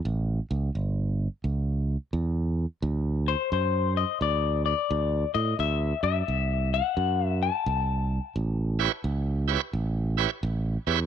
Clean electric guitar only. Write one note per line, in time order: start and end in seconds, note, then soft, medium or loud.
3.28 3.52 C5 medium
3.53 3.97 C5 medium
3.97 4.22 D#5 medium
4.22 4.64 D5 medium
4.66 5.34 D5 medium
5.34 5.59 D#5 medium
5.60 6.02 E5 medium
6.03 6.73 E5 loud
6.74 7.27 F#5 loud
7.27 7.42 E5 loud
7.43 9.16 A5 medium
9.16 10.15 G5 medium